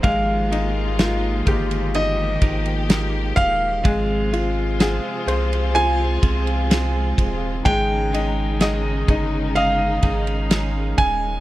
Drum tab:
RD |x-x-x-xxx-xxx-x-|x-x-x-xxx-xxx-x-|x-x-x-x-x-xxx-x-|
SD |----o-------o---|----o-------o---|----o-------o---|
BD |o-----o---o---o-|o---------o---o-|o-----o---o---o-|